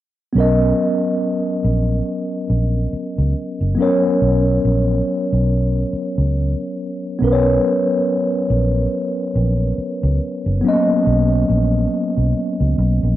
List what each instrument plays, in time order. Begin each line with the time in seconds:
0.33 fingered electric bass B1, tine electric piano F#3 B3 C#4
0.38 tine electric piano A#4 D#5
1.65 fingered electric bass A#1
2.50 fingered electric bass A#1
2.93 muted fingered electric bass stroke
3.18 fingered electric bass C#2
3.61 fingered electric bass F#1
3.75 tine electric piano F#3 B3 C#4
3.81 tine electric piano A#4 C#5
4.22 fingered electric bass B1
4.65 fingered electric bass A#1
5.33 fingered electric bass B1
5.93 muted fingered electric bass stroke
6.18 fingered electric bass C#2
7.19 fingered electric bass B1, tine electric piano F#3 B3 C#4
7.24 tine electric piano A#4 B4
7.32 tine electric piano C#5
8.50 fingered electric bass A#1
9.36 fingered electric bass A#1
9.78 muted fingered electric bass stroke
10.03 fingered electric bass C#2
10.46 fingered electric bass F#1
10.61 tine electric piano F#3 B3 C#4
10.67 tine electric piano A#3 D#5
11.07 fingered electric bass B1
11.49 fingered electric bass A#1
12.17 fingered electric bass B1
12.60 fingered electric bass C#2
12.78 fingered electric bass B1
13.03 fingered electric bass A#1